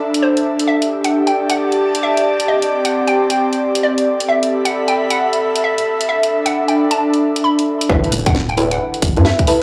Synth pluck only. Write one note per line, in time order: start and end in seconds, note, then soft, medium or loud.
0.22 0.43 C5 medium
0.68 0.84 E5 medium
1.05 1.12 F#5 medium
1.27 1.34 G5 medium
1.50 1.62 F#5 medium
2.03 2.23 E5 medium
2.48 2.65 D#5 loud
2.85 2.92 F#5 medium
3.07 3.15 G5 medium
3.30 3.43 G5 medium
3.83 4.04 D5 medium
4.29 4.45 E5 medium
4.65 4.72 F#5 medium
4.88 4.95 G5 medium
5.10 5.23 F#5 medium
5.64 5.84 E5 medium
6.09 6.26 E5 medium
6.46 6.53 F#5 medium
6.68 6.75 G5 medium
6.91 7.04 A5 medium
7.44 7.65 B5 medium
7.89 8.06 E5 loud
8.26 8.33 F#5 medium
8.49 8.56 G5 medium
8.71 8.84 F#5 medium
9.25 9.45 E5 loud